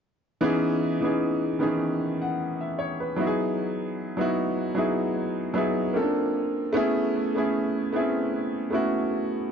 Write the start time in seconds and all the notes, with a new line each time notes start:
0.41 E3 B3 C#4 D#4 G#4
1.01 E3 B3 C#4 D#4 G#4
1.59 D#3 B3 C#4 D#4 G#4
1.65 E3
2.22 F#5
2.61 E5
2.79 C#5
3.00 B4
3.16 F#3 B3 D#4 E4 F#4
3.27 G#4
4.17 F#3 B3 D#4 E4 F#4
4.75 F#3 B3 D#4 E4 G#4
5.54 F#3 B3 D#4 E4 G#4
5.93 A#3 C4 C#4 F4 A4
6.02 D4
6.73 A3 B3 C#4 E4 G#4
7.35 A3 B3 C#4 E4 G#4
7.92 A3 B3 C4 E4 G#4
8.00 C#4
8.70 A3 B3 C#4 E4 F#4